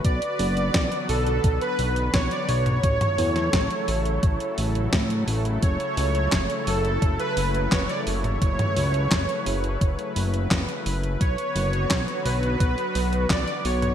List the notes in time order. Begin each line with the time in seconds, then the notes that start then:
Already playing: F#4 B4
0.05 B1 D3 F#3 B3 D5, kick, closed hi-hat
0.22 closed hi-hat
0.39 F#1, open hi-hat
0.57 closed hi-hat
0.74 B1, kick, snare, closed hi-hat
0.92 closed hi-hat
1.09 B1 A4, open hi-hat
1.27 closed hi-hat
1.44 B1, kick, closed hi-hat
1.61 B4, closed hi-hat
1.79 B1, open hi-hat
1.96 closed hi-hat
2.14 B1 C#5, kick, snare, closed hi-hat
2.31 D5, closed hi-hat
2.48 B1 C#5, open hi-hat
2.66 closed hi-hat, mid tom
2.83 A1 C#3 A3 E4 A4, kick, closed hi-hat
3.01 closed hi-hat, mid tom
3.18 E2, open hi-hat
3.36 snare, closed hi-hat
3.53 A1, kick, snare, closed hi-hat
3.71 closed hi-hat
3.88 A1, open hi-hat
4.05 closed hi-hat
4.23 A1, kick, closed hi-hat
4.40 closed hi-hat
4.58 A1, open hi-hat
4.75 closed hi-hat
4.93 A2, kick, snare, closed hi-hat
5.10 closed hi-hat
5.28 A1, open hi-hat
5.45 closed hi-hat
5.63 F#1 C#5, kick, closed hi-hat
5.80 closed hi-hat
5.97 C#2, open hi-hat
6.15 closed hi-hat
6.32 F#1, kick, snare, clap, closed hi-hat
6.50 closed hi-hat
6.67 F#1 A4, open hi-hat
6.85 closed hi-hat
7.02 F#1, kick, closed hi-hat
7.20 B4, closed hi-hat
7.37 F#1, open hi-hat
7.55 closed hi-hat
7.72 F#1 C#5, kick, snare, clap, closed hi-hat
7.89 D5, closed hi-hat
8.07 F#1 C#5, open hi-hat
8.24 closed hi-hat, mid tom
8.42 F#1 B4, kick, closed hi-hat
8.59 closed hi-hat, mid tom
8.77 C#2, open hi-hat
8.94 closed hi-hat
9.11 F#1, kick, snare, clap, closed hi-hat
9.29 closed hi-hat
9.46 F#1, open hi-hat
9.64 closed hi-hat
9.81 F#1, kick, closed hi-hat
9.99 closed hi-hat
10.16 F#1, open hi-hat
10.34 closed hi-hat
10.51 F#1, kick, snare, clap, closed hi-hat
10.69 closed hi-hat
10.86 F#1, open hi-hat
11.03 closed hi-hat
11.21 B1 D3 F#3 B3 F#4 C#5, kick, closed hi-hat
11.38 closed hi-hat
11.56 F#1, open hi-hat
11.73 closed hi-hat
11.91 B1, kick, snare, clap, closed hi-hat
12.08 closed hi-hat
12.25 B1 B4, open hi-hat
12.43 closed hi-hat
12.60 B1, kick, closed hi-hat
12.78 closed hi-hat
12.95 B1, open hi-hat
13.13 closed hi-hat
13.30 B1 D5, kick, snare, clap, closed hi-hat
13.48 closed hi-hat
13.65 B1 C#5, open hi-hat
13.82 closed hi-hat, mid tom